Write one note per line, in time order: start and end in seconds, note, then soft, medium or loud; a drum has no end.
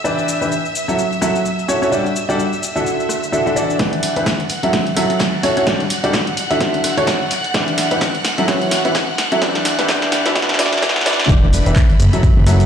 0.00 3.81 E5 medium
0.00 3.81 E6 medium
0.04 0.38 E3 medium
0.04 0.38 D4 medium
0.04 0.38 E4 medium
0.04 0.38 G4 medium
0.04 0.38 B4 medium
0.04 0.38 D5 medium
0.04 cabasa soft
0.18 cabasa soft
0.28 cabasa medium
0.41 0.52 E3 medium
0.41 0.52 D4 medium
0.41 0.52 E4 medium
0.41 0.52 G4 medium
0.41 0.52 B4 medium
0.41 0.52 E5 medium
0.41 cabasa soft
0.52 cabasa soft
0.65 cabasa soft
0.75 cabasa medium
0.88 0.99 F#3 medium
0.88 0.99 C#4 medium
0.88 0.99 E4 medium
0.88 0.99 F#4 medium
0.88 0.99 A4 medium
0.88 0.99 E5 medium
0.88 cabasa soft
0.99 cabasa soft
1.12 cabasa soft
1.21 1.36 F#3 medium
1.21 1.36 C#4 medium
1.21 1.36 E4 medium
1.21 1.36 F#4 medium
1.21 1.36 A4 medium
1.21 1.36 E5 loud
1.21 cross-stick medium
1.21 cabasa medium
1.36 cabasa soft
1.46 cabasa soft
1.59 cabasa soft
1.68 1.80 C#4 medium
1.68 1.80 E4 medium
1.68 1.80 F#4 medium
1.68 1.80 A4 medium
1.68 1.80 C#5 medium
1.68 cabasa medium
1.82 1.89 C#4 medium
1.82 1.89 E4 medium
1.82 1.89 F#4 medium
1.82 1.89 A4 medium
1.82 1.89 C#5 medium
1.82 cabasa soft
1.92 2.06 G3 medium
1.92 2.06 D4 medium
1.92 2.06 F#4 medium
1.92 2.06 G4 medium
1.92 2.06 A4 medium
1.92 2.06 D5 medium
1.92 cabasa soft
2.06 cabasa soft
2.16 cabasa medium
2.29 2.40 G3 medium
2.29 2.40 D4 medium
2.29 2.40 F#4 medium
2.29 2.40 G4 medium
2.29 2.40 A4 medium
2.29 2.40 D5 loud
2.29 cabasa soft
2.39 cabasa soft
2.53 cabasa soft
2.63 cabasa medium
2.76 3.19 D3 medium
2.76 3.19 D4 medium
2.76 3.19 E4 medium
2.76 3.19 F#4 medium
2.76 3.19 A4 medium
2.76 3.19 E5 medium
2.76 cabasa soft
2.86 cabasa soft
3.00 cabasa soft
3.09 cross-stick medium
3.09 cabasa medium
3.23 cabasa soft
3.32 3.44 D3 medium
3.32 3.44 D4 medium
3.32 3.44 E4 medium
3.32 3.44 F#4 medium
3.32 3.44 A4 medium
3.32 3.44 E5 loud
3.32 cabasa soft
3.46 3.55 D3 medium
3.46 3.54 D4 medium
3.46 3.54 E4 medium
3.46 3.54 F#4 medium
3.46 3.54 A4 medium
3.46 3.54 E5 loud
3.46 cabasa soft
3.56 3.77 E3 medium
3.56 3.77 D4 medium
3.56 3.77 E4 medium
3.56 3.77 F#4 medium
3.56 3.77 A4 medium
3.56 3.77 D5 medium
3.56 cabasa medium
3.70 cabasa soft
3.79 4.13 E3 medium
3.79 4.13 D4 medium
3.79 4.13 E4 medium
3.79 4.13 G4 medium
3.79 4.13 B4 medium
3.79 4.13 D5 medium
3.79 11.30 F#5 medium
3.79 11.31 F#6 medium
3.79 kick loud
3.79 snare soft
3.79 closed hi-hat medium
3.79 ride medium
3.93 closed hi-hat soft
4.03 open hi-hat loud
4.03 ride medium
4.16 4.27 E3 medium
4.16 4.27 D4 medium
4.16 4.27 E4 medium
4.16 4.27 G4 medium
4.16 4.27 B4 medium
4.16 4.27 E5 medium
4.16 closed hi-hat medium
4.26 kick loud
4.26 snare soft
4.26 snare loud
4.26 closed hi-hat medium
4.26 ride medium
4.40 closed hi-hat soft
4.40 ride soft
4.49 open hi-hat medium
4.49 ride medium
4.63 4.74 F#3 medium
4.63 4.74 C#4 medium
4.63 4.74 E4 medium
4.63 4.74 F#4 medium
4.63 4.74 A4 medium
4.63 4.74 E5 medium
4.63 closed hi-hat medium
4.73 kick loud
4.73 snare medium
4.73 closed hi-hat medium
4.73 ride medium
4.87 closed hi-hat soft
4.96 5.11 F#3 medium
4.96 5.11 C#4 medium
4.96 5.11 E4 medium
4.96 5.11 F#4 medium
4.96 5.11 A4 medium
4.96 5.11 E5 loud
4.96 cross-stick medium
4.96 open hi-hat loud
4.96 ride medium
5.10 closed hi-hat medium
5.19 kick loud
5.19 snare loud
5.19 snare medium
5.19 closed hi-hat medium
5.19 ride medium
5.43 5.55 C#4 medium
5.43 5.55 E4 medium
5.43 5.55 F#4 medium
5.43 5.55 A4 medium
5.43 5.55 C#5 medium
5.43 snare soft
5.43 open hi-hat medium
5.43 ride medium
5.57 5.64 C#4 medium
5.57 5.64 E4 medium
5.57 5.64 F#4 medium
5.57 5.64 A4 medium
5.57 5.64 C#5 medium
5.57 closed hi-hat medium
5.67 5.81 G3 medium
5.67 5.81 D4 medium
5.67 5.81 F#4 medium
5.67 5.81 G4 medium
5.67 5.81 A4 medium
5.67 5.81 D5 medium
5.67 kick loud
5.67 snare medium
5.67 closed hi-hat medium
5.67 ride medium
5.80 closed hi-hat soft
5.80 ride soft
5.90 open hi-hat loud
5.90 ride medium
6.04 6.15 G3 medium
6.04 6.15 D4 medium
6.04 6.15 F#4 medium
6.04 6.15 G4 medium
6.04 6.15 A4 medium
6.04 6.15 D5 loud
6.04 closed hi-hat medium
6.13 kick loud
6.13 snare loud
6.13 snare medium
6.13 closed hi-hat medium
6.13 ride medium
6.27 closed hi-hat soft
6.37 open hi-hat medium
6.37 ride medium
6.50 6.94 D3 medium
6.50 6.94 D4 medium
6.50 6.94 E4 medium
6.50 6.94 F#4 medium
6.50 6.94 A4 medium
6.50 6.94 E5 medium
6.50 snare soft
6.50 closed hi-hat medium
6.60 kick loud
6.60 snare medium
6.60 closed hi-hat medium
6.60 ride medium
6.74 closed hi-hat soft
6.84 cross-stick medium
6.84 open hi-hat loud
6.84 ride medium
6.97 7.08 D3 medium
6.97 7.08 D4 medium
6.97 7.08 E4 medium
6.97 7.08 F#4 medium
6.97 7.08 A4 medium
6.97 7.08 C#5 loud
6.97 closed hi-hat medium
6.97 ride soft
7.07 kick loud
7.07 snare loud
7.07 snare medium
7.07 closed hi-hat medium
7.07 ride medium
7.31 snare soft
7.31 open hi-hat medium
7.31 ride medium
7.44 closed hi-hat soft
7.54 7.88 E3 medium
7.54 7.88 D4 medium
7.54 7.88 E4 medium
7.54 7.88 G4 medium
7.54 7.88 B4 medium
7.54 7.88 D5 medium
7.54 kick loud
7.54 snare medium
7.54 closed hi-hat medium
7.54 ride medium
7.68 closed hi-hat soft
7.78 snare medium
7.78 open hi-hat loud
7.78 ride medium
7.91 8.02 E3 medium
7.91 8.02 D4 medium
7.91 8.02 E4 medium
7.91 8.02 G4 medium
7.91 8.02 B4 medium
7.91 8.02 E5 medium
7.91 closed hi-hat soft
8.01 kick loud
8.01 snare medium
8.01 snare loud
8.01 closed hi-hat medium
8.01 ride medium
8.15 closed hi-hat soft
8.15 ride soft
8.25 snare medium
8.25 open hi-hat medium
8.25 ride medium
8.38 8.46 F#3 medium
8.38 8.46 C#4 medium
8.38 8.46 E4 medium
8.38 8.46 F#4 medium
8.38 8.46 A4 medium
8.38 8.46 E5 medium
8.38 closed hi-hat soft
8.48 8.82 E3 medium
8.48 8.82 C#4 medium
8.48 8.82 E4 medium
8.48 8.82 F#4 medium
8.48 8.82 B4 medium
8.48 8.82 C#5 medium
8.48 kick loud
8.48 snare medium
8.48 closed hi-hat medium
8.48 ride medium
8.62 closed hi-hat soft
8.71 snare medium
8.71 open hi-hat loud
8.71 ride medium
8.85 8.96 E3 medium
8.85 8.96 C#4 medium
8.85 8.96 E4 medium
8.85 8.96 F#4 medium
8.85 8.96 B4 medium
8.85 8.96 E5 medium
8.85 closed hi-hat soft
8.95 kick loud
8.95 snare medium
8.95 snare loud
8.95 closed hi-hat medium
8.95 ride medium
9.18 snare soft
9.18 snare medium
9.18 open hi-hat medium
9.18 ride medium
9.32 9.40 F#3 medium
9.32 9.40 C#4 medium
9.32 9.40 E4 medium
9.32 9.40 F#4 medium
9.32 9.40 A4 medium
9.32 9.40 E5 medium
9.32 closed hi-hat soft
9.41 9.75 E3 medium
9.41 9.75 D4 medium
9.41 9.76 E4 medium
9.41 9.75 G4 medium
9.41 9.75 B4 medium
9.41 9.76 D5 medium
9.41 kick loud
9.41 snare medium
9.41 closed hi-hat medium
9.41 ride medium
9.55 snare medium
9.55 closed hi-hat soft
9.55 ride soft
9.65 snare medium
9.65 open hi-hat loud
9.65 ride medium
9.79 9.87 E3 medium
9.79 9.87 D4 medium
9.79 9.87 E4 medium
9.79 9.87 G4 medium
9.79 9.87 B4 medium
9.79 9.87 E5 medium
9.79 snare medium
9.79 closed hi-hat soft
9.88 10.22 E3 medium
9.88 10.22 D4 medium
9.88 10.22 E4 medium
9.88 10.22 G4 medium
9.88 10.22 B4 medium
9.88 10.22 D5 medium
9.88 kick loud
9.88 snare loud
9.88 closed hi-hat medium
9.88 ride medium
10.02 snare medium
10.02 closed hi-hat soft
10.12 snare loud
10.12 open hi-hat medium
10.12 ride medium
10.25 10.34 E3 medium
10.25 10.34 D4 medium
10.25 10.34 E4 medium
10.25 10.34 F#4 medium
10.25 10.34 B4 medium
10.25 10.34 E5 medium
10.25 snare soft
10.25 snare medium
10.25 closed hi-hat medium
10.35 10.57 E3 medium
10.35 10.57 D4 medium
10.35 10.57 E4 medium
10.35 10.57 F#4 medium
10.35 10.57 B4 medium
10.35 10.57 D5 medium
10.35 kick loud
10.35 snare loud
10.35 closed hi-hat medium
10.35 ride medium
10.42 snare medium
10.49 snare medium
10.49 closed hi-hat soft
10.54 snare medium
10.59 10.81 E3 medium
10.59 10.81 D4 medium
10.59 10.81 E4 medium
10.59 10.81 F#4 medium
10.59 10.81 B4 medium
10.59 10.81 D5 medium
10.59 snare loud
10.59 open hi-hat loud
10.59 ride medium
10.66 snare medium
10.73 snare medium
10.73 closed hi-hat medium
10.73 ride soft
10.78 snare medium
10.82 11.04 E3 medium
10.82 11.04 D4 medium
10.82 11.04 E4 medium
10.82 11.04 F#4 medium
10.82 11.04 B4 medium
10.82 11.04 D5 medium
10.82 kick loud
10.82 snare loud
10.82 closed hi-hat medium
10.82 ride medium
10.89 snare loud
10.96 snare medium
11.01 snare loud
11.06 11.28 E3 medium
11.06 11.28 D4 medium
11.06 11.28 E4 medium
11.06 11.28 F#4 medium
11.06 11.28 B4 medium
11.06 11.28 D5 loud
11.06 snare loud
11.06 open hi-hat medium
11.06 ride medium
11.13 snare loud
11.20 snare loud
11.20 closed hi-hat soft
11.20 ride soft
11.24 snare loud
11.29 11.60 E1 loud
11.29 11.63 E3 medium
11.29 11.63 D4 medium
11.29 11.63 E4 medium
11.29 11.63 G4 medium
11.29 11.63 B4 medium
11.29 12.66 B4 medium
11.29 11.63 D5 medium
11.29 12.66 B5 medium
11.29 kick loud
11.29 closed hi-hat medium
11.29 ride medium
11.29 cabasa soft
11.53 open hi-hat loud
11.53 ride medium
11.53 cabasa medium
11.66 11.73 E1 medium
11.66 11.77 E3 medium
11.66 11.77 D4 medium
11.66 11.77 E4 medium
11.66 11.77 G4 medium
11.66 11.77 B4 medium
11.66 11.77 E5 medium
11.66 closed hi-hat medium
11.66 cabasa soft
11.76 kick loud
11.76 snare loud
11.76 clap loud
11.76 closed hi-hat medium
11.76 ride medium
11.76 cabasa soft
11.89 closed hi-hat soft
11.89 ride soft
12.00 12.09 F#1 medium
12.00 open hi-hat medium
12.00 ride medium
12.00 cabasa medium
12.13 12.24 F#3 medium
12.13 12.24 C#4 medium
12.13 12.24 E4 medium
12.13 12.24 F#4 medium
12.13 12.24 A4 medium
12.13 12.24 E5 medium
12.13 closed hi-hat medium
12.13 cabasa soft
12.23 kick loud
12.23 closed hi-hat medium
12.23 ride medium
12.23 cabasa soft
12.37 12.66 F#1 medium
12.46 12.61 F#3 loud
12.46 12.61 C#4 medium
12.46 12.61 E4 medium
12.46 12.61 F#4 medium
12.46 12.61 A4 medium
12.46 12.61 E5 loud
12.46 cross-stick medium
12.46 open hi-hat loud
12.46 ride medium
12.46 cabasa medium
12.60 closed hi-hat medium
12.60 cabasa soft